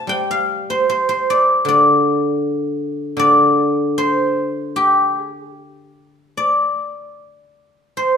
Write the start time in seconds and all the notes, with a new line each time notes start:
Already playing: C3 C5 D5 F5 A5
0.07 G3 G5
0.31 F5
0.70 C5
0.90 C5
1.09 C5
1.30 D5
1.65 D3 D5
3.17 D3 D5
3.98 C5
4.76 G4
5.17 G#4
5.29 G4
6.37 D5
7.97 C5